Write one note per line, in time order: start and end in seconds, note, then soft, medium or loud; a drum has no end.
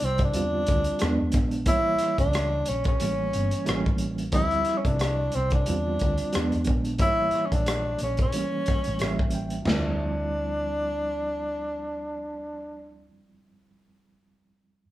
0.00 0.36 C2 medium
0.00 0.22 F3 medium
0.00 0.22 G3 medium
0.00 0.23 C4 medium
0.00 0.23 E4 medium
0.00 closed hi-hat medium
0.05 0.21 C4 medium
0.18 kick medium
0.18 closed hi-hat soft
0.24 1.32 D4 medium
0.33 0.64 E2 medium
0.33 1.00 D3 medium
0.33 1.00 G3 medium
0.33 1.01 C4 medium
0.33 1.01 F4 medium
0.33 closed hi-hat medium
0.66 0.85 D2 medium
0.66 kick medium
0.66 closed hi-hat medium
0.84 closed hi-hat soft
0.99 1.18 E2 medium
0.99 1.61 F#3 medium
0.99 1.61 G#3 medium
0.99 1.62 B3 medium
0.99 1.62 D4 medium
0.99 cross-stick medium
0.99 closed hi-hat medium
1.21 1.35 E2 medium
1.32 1.67 A#1 medium
1.32 kick medium
1.32 closed hi-hat medium
1.36 cross-stick soft
1.51 closed hi-hat soft
1.66 1.96 A1 medium
1.66 2.88 E3 medium
1.66 2.89 G3 medium
1.66 2.89 A#3 medium
1.66 2.16 E4 loud
1.66 2.90 C#5 medium
1.66 kick loud
1.66 closed hi-hat medium
1.98 closed hi-hat soft
2.02 cross-stick soft
2.18 2.61 C#2 medium
2.18 2.70 D4 medium
2.18 kick medium
2.18 closed hi-hat soft
2.33 cross-stick medium
2.33 closed hi-hat medium
2.65 2.97 A#1 medium
2.65 2.87 C#4 medium
2.65 closed hi-hat medium
2.84 3.97 C#4 medium
2.84 kick medium
2.84 closed hi-hat soft
3.00 3.30 A1 medium
3.00 3.65 E3 medium
3.00 3.65 G3 medium
3.00 3.66 A#3 medium
3.00 3.68 C#4 medium
3.00 closed hi-hat medium
3.33 3.51 G1 medium
3.33 closed hi-hat soft
3.51 closed hi-hat soft
3.66 4.34 A1 medium
3.66 4.27 E3 medium
3.66 4.27 G3 medium
3.66 4.28 A#3 medium
3.66 3.75 C4 medium
3.66 cross-stick loud
3.66 closed hi-hat medium
3.75 4.32 C#4 medium
3.86 kick medium
3.98 closed hi-hat medium
4.18 closed hi-hat soft
4.32 4.63 D2 medium
4.32 4.40 E3 medium
4.32 5.55 G3 medium
4.32 5.56 C4 medium
4.32 4.79 E4 loud
4.32 5.56 E4 medium
4.32 kick medium
4.32 closed hi-hat medium
4.40 5.58 F3 medium
4.51 closed hi-hat soft
4.65 closed hi-hat soft
4.69 cross-stick soft
4.78 4.89 C#4 medium
4.85 5.28 C2 medium
4.85 5.37 D4 medium
4.85 kick medium
4.85 closed hi-hat soft
4.99 cross-stick medium
4.99 closed hi-hat medium
5.32 5.64 C2 medium
5.32 5.53 C4 medium
5.32 closed hi-hat medium
5.50 6.63 D4 medium
5.50 kick medium
5.50 closed hi-hat soft
5.66 5.97 E2 medium
5.66 6.33 D3 medium
5.66 6.34 G3 medium
5.66 6.34 C4 medium
5.66 6.35 F4 medium
5.66 closed hi-hat medium
5.99 6.18 D2 medium
5.99 kick medium
5.99 closed hi-hat soft
6.17 closed hi-hat soft
6.33 6.51 E2 medium
6.33 6.94 F#3 medium
6.33 6.94 G#3 medium
6.33 6.95 B3 medium
6.33 6.95 D4 medium
6.33 cross-stick loud
6.33 closed hi-hat medium
6.52 6.66 E2 medium
6.52 closed hi-hat soft
6.64 kick medium
6.64 closed hi-hat soft
6.69 7.01 A#1 medium
6.85 closed hi-hat soft
6.98 7.30 A1 medium
6.98 8.22 E3 medium
6.98 8.22 G3 medium
6.98 8.23 A#3 medium
6.98 7.48 E4 loud
6.98 kick medium
6.98 closed hi-hat medium
7.03 8.23 C#5 medium
7.31 closed hi-hat soft
7.35 cross-stick soft
7.46 7.55 C#4 medium
7.52 7.95 A#1 medium
7.52 8.01 D4 medium
7.52 kick medium
7.52 closed hi-hat soft
7.66 cross-stick medium
7.66 closed hi-hat medium
7.99 8.30 A#1 medium
7.99 closed hi-hat medium
8.03 8.19 C#4 medium
8.17 kick medium
8.17 closed hi-hat soft
8.22 9.30 C#4 medium
8.32 8.99 E3 medium
8.32 9.00 G3 medium
8.32 9.01 A#3 medium
8.32 closed hi-hat medium
8.37 9.02 C#4 medium
8.66 muted fingered electric bass stroke soft
8.66 kick medium
8.66 closed hi-hat soft
8.84 8.99 A1 medium
8.84 closed hi-hat soft
8.99 9.59 A1 medium
8.99 9.61 E3 medium
8.99 9.61 G3 medium
8.99 9.62 A#3 medium
8.99 9.32 E5 medium
8.99 cross-stick medium
8.99 closed hi-hat medium
9.03 9.62 C#4 medium
9.19 kick medium
9.30 closed hi-hat medium
9.35 9.65 G5 medium
9.50 closed hi-hat soft
9.62 13.00 F3 medium
9.62 13.04 G3 medium
9.62 floor tom medium
9.62 china medium
9.68 13.06 D2 medium
9.68 13.07 C4 medium
9.68 13.07 D4 medium
9.68 snare medium
9.73 13.11 E4 medium